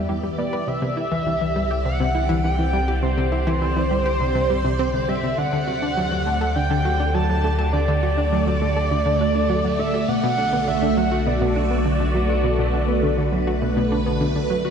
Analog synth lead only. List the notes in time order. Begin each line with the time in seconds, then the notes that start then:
0.38 D5
0.68 E5
1.85 F#5
2.44 G5
3.03 C5
5.08 E5
5.38 F#5
6.55 G5
7.14 A5
7.73 D5
9.79 E5
10.08 F#5
10.67 E5
10.97 F#5
11.26 D5